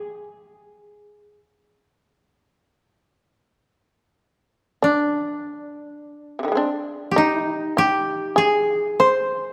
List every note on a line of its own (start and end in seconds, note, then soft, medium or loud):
0.00 0.23 G#4 medium
0.00 1.36 G#4 medium
4.82 6.54 D4 medium
4.82 7.24 D4 medium
6.39 6.43 C3 soft
6.43 6.51 D3 soft
6.43 6.58 D#3 soft
6.48 6.57 G3 soft
6.48 6.65 G#3 soft
6.55 6.69 C4 soft
6.55 7.12 D4 medium
7.11 7.78 G4 medium
7.16 7.72 D#4 medium
7.16 9.52 D#4 medium
7.77 8.33 G4 medium
7.77 8.44 G4 medium
8.36 8.95 G#4 medium
8.36 9.53 G#4 medium
9.00 9.53 C5 medium